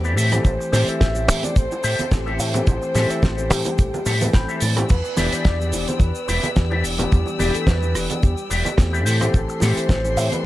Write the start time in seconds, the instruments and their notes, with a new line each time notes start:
Already playing: fingered electric bass E2, grand piano E3 A3 C4 G4, soft synth lead B4, string section D5 G5 D6
0.04 clean electric guitar G4 B4 D5 E5, shaker
0.16 fingered electric bass A2, clean electric guitar G4 A4 C5 E5, string section A4 C5 G5, open hi-hat, shaker
0.32 grand piano E3 A3 C4 G4, cross-stick, closed hi-hat, high bongo, low conga, shaker
0.44 fingered electric bass A1, soft synth lead C5, kick, closed hi-hat, low conga, shaker
0.59 muted clean electric guitar stroke, shaker
0.72 fingered electric bass A2, grand piano E3 A3 C4 G4, clean electric guitar G4 A4 C5 E5, snare, open hi-hat, high bongo, high conga, shaker
0.88 soft synth lead E5, muted fingered electric bass stroke, closed hi-hat, shaker
1.01 fingered electric bass A1, kick, snare, closed hi-hat, shaker
1.15 grand piano E3 A3 C4 G4, shaker
1.28 fingered electric bass A2, open hi-hat, high bongo, shaker
1.43 soft synth lead D5, closed hi-hat, high conga, shaker
1.55 fingered electric bass A1, grand piano E3 A3 C4 G4, soft synth lead C5, kick, closed hi-hat, shaker
1.72 high bongo, shaker
1.83 fingered electric bass A2, clean electric guitar G4 A4 C5 E5, open hi-hat, shaker
1.99 muted fingered electric bass stroke, closed hi-hat, high conga, shaker
2.11 fingered electric bass A1, grand piano E3 A3 C4 G4, kick, cross-stick, snare, closed hi-hat, shaker
2.26 clean electric guitar G4 A4 C5 E5, high bongo, shaker
2.39 fingered electric bass A2, open hi-hat, shaker
2.54 grand piano E3 A3 C4 G4, muted clean electric guitar stroke, closed hi-hat, low conga, shaker
2.67 fingered electric bass A1, soft synth lead C5, kick, closed hi-hat, high bongo, low conga, shaker
2.82 muted clean electric guitar stroke, shaker
2.94 fingered electric bass A2, grand piano E3 A3 C4 G4, clean electric guitar G4 A4 C5 E5, snare, open hi-hat, high conga, shaker
3.10 soft synth lead E5, muted fingered electric bass stroke, closed hi-hat, shaker
3.22 fingered electric bass A1, soft synth lead C5, kick, snare, closed hi-hat, high bongo, shaker
3.37 grand piano E3 A3 C4 G4, shaker
3.50 fingered electric bass A2, soft synth lead G4, cross-stick, open hi-hat, shaker
3.64 high bongo, high conga, shaker
3.66 closed hi-hat, shaker
3.78 fingered electric bass A1, grand piano E3 A3 C4 G4, kick, closed hi-hat, shaker
3.94 high conga, shaker
4.05 fingered electric bass A2, clean electric guitar G4 A4 C5 E5, open hi-hat, low conga, shaker
4.21 grand piano E3 A3 C4 B4, closed hi-hat, high bongo, high conga, shaker
4.33 fingered electric bass A1, grand piano E3 A3 C4 B5, clean electric guitar G5, kick, cross-stick, snare, closed hi-hat, shaker
4.48 clean electric guitar G4 A4 C5 E5, shaker
4.60 fingered electric bass A2, clean electric guitar D5, open hi-hat, high bongo, shaker
4.76 grand piano E3 A3 C4 G4, muted clean electric guitar stroke, cross-stick, closed hi-hat, low conga, shaker
4.89 fingered electric bass E2, soft synth lead B4, string section D5 G5 E6, kick, closed hi-hat, crash, low conga, shaker
5.04 muted clean electric guitar stroke, shaker
5.16 fingered electric bass E1, grand piano E3 B3 D4 G4, clean electric guitar G4 B4 D5 E5, snare, open hi-hat, high conga, shaker
5.32 soft synth lead D5, closed hi-hat, high bongo, shaker
5.45 fingered electric bass E2, kick, snare, closed hi-hat, shaker
5.59 grand piano E3 B3 D4 G4, shaker
5.72 fingered electric bass E1, open hi-hat, high bongo, shaker
5.88 soft synth lead C5, closed hi-hat, high conga, shaker
6.00 fingered electric bass E2, grand piano E3 B3 D4 G4, soft synth lead B4, kick, closed hi-hat, shaker
6.15 shaker
6.28 fingered electric bass E1, clean electric guitar G4 B4 D5 E5, open hi-hat, high bongo, shaker
6.43 closed hi-hat, high conga, shaker
6.55 fingered electric bass E2, grand piano E3 B3 D4 G4, kick, cross-stick, snare, closed hi-hat, shaker
6.70 clean electric guitar G4 B4 D5 E5, high bongo, shaker
6.84 fingered electric bass E1, open hi-hat, shaker
6.98 grand piano E3 B3 D4 G4, muted clean electric guitar stroke, closed hi-hat, low conga, shaker
7.12 fingered electric bass E2, soft synth lead G4, kick, closed hi-hat, low conga, shaker
7.26 muted clean electric guitar stroke, high bongo, shaker
7.39 fingered electric bass E1, grand piano E3 B3 D4 G4, clean electric guitar G4 B4 D5 E5, open hi-hat, high conga, shaker
7.55 soft synth lead A4, closed hi-hat, shaker
7.67 fingered electric bass E2, soft synth lead B4, kick, snare, closed hi-hat, high bongo, shaker
7.82 grand piano E3 B3 D4 G4, shaker
7.95 fingered electric bass E1, cross-stick, open hi-hat, shaker
8.10 closed hi-hat, high conga, shaker
8.22 fingered electric bass E2, grand piano E3 B3 D4 G4, soft synth lead G4, kick, closed hi-hat, high bongo, shaker
8.37 shaker
8.50 fingered electric bass E1, clean electric guitar G4 B4 D5 E5, open hi-hat, shaker
8.65 closed hi-hat, high bongo, high conga, shaker
8.78 fingered electric bass E2, grand piano E3 A3 C4 G4, kick, cross-stick, snare, closed hi-hat, shaker
8.93 clean electric guitar G4 B4 D5 E5, shaker
9.05 fingered electric bass A2, clean electric guitar G4 A4 C5 E5, string section A4 C6, open hi-hat, shaker
9.20 grand piano E3 A3 C4 G4, cross-stick, closed hi-hat, high bongo, low conga, shaker
9.34 fingered electric bass A1, soft synth lead A4, kick, closed hi-hat, low conga, shaker
9.48 muted clean electric guitar stroke, shaker
9.60 fingered electric bass A2, grand piano E3 A3 C4 G4, clean electric guitar G4 A4 C5 E5, snare, open hi-hat, high bongo, high conga, shaker
9.77 soft synth lead C5, muted fingered electric bass stroke, closed hi-hat, shaker
9.89 fingered electric bass A1, kick, snare, closed hi-hat, shaker
10.04 grand piano E3 A3 C4 G4, shaker
10.17 fingered electric bass A2, open hi-hat, high bongo, shaker
10.32 soft synth lead B4, closed hi-hat, high conga, shaker